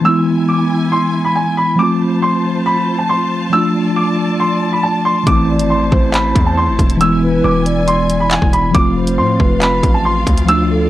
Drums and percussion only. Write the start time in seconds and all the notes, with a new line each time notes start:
5.27 kick, closed hi-hat
5.59 closed hi-hat
5.92 kick
6.14 clap, closed hi-hat
6.35 kick, closed hi-hat
6.79 kick, closed hi-hat
6.90 closed hi-hat
7.01 closed hi-hat
7.66 closed hi-hat
7.88 closed hi-hat
8.10 closed hi-hat
8.31 clap, closed hi-hat
8.42 kick
8.53 closed hi-hat
8.75 kick, closed hi-hat
9.07 closed hi-hat
9.40 kick
9.62 clap, closed hi-hat
9.83 kick, closed hi-hat
10.27 kick, closed hi-hat
10.38 closed hi-hat
10.48 closed hi-hat